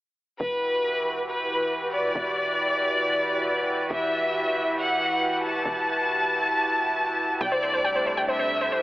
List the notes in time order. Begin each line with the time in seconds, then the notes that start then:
0.40 E1 E3 E4 F#4 G4 B4
1.28 B4
1.93 D5
2.15 E1
3.90 E1 E5
4.78 F#5
5.43 A5
5.65 E1
7.41 C2 C3 G3 A3 D4 D5 G5
7.52 C5
7.63 C5
7.74 C5
7.84 G5
7.95 C5
8.06 C5
8.17 G5
8.28 C5 E5
8.39 C5
8.61 C5
8.72 C5